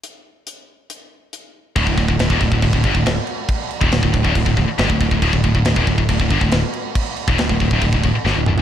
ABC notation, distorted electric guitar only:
X:1
M:4/4
L:1/16
Q:1/4=139
K:Cdor
V:1 name="Distorted electric guitar" clef=bass
z16 | [D,,A,,] [D,,A,,] [D,,A,,] [D,,A,,] [D,,A,,] [E,,B,,] [D,,A,,] [D,,A,,] [D,,A,,] [D,,A,,] [G,,D,] [D,,A,,] [D,,A,,] z3 | z3 [E,,B,,] [D,,A,,] [D,,A,,] [D,,A,,] [D,,A,,] [D,,A,,] [D,,A,,] [D,,A,,] z [G,,D,] [D,,A,,] [D,,A,,] [D,,A,,] | [D,,A,,] [D,,A,,] [D,,A,,] [D,,A,,] [D,,A,,] [E,,B,,] [D,,A,,] [D,,A,,] [D,,A,,] [D,,A,,] [G,,D,] [D,,A,,] [D,,A,,] z3 |
z3 [E,,B,,] [D,,A,,] [D,,A,,] [D,,A,,] [D,,A,,] [D,,A,,] [D,,A,,] [D,,A,,] z [G,,D,] [D,,A,,] [D,,A,,] z |]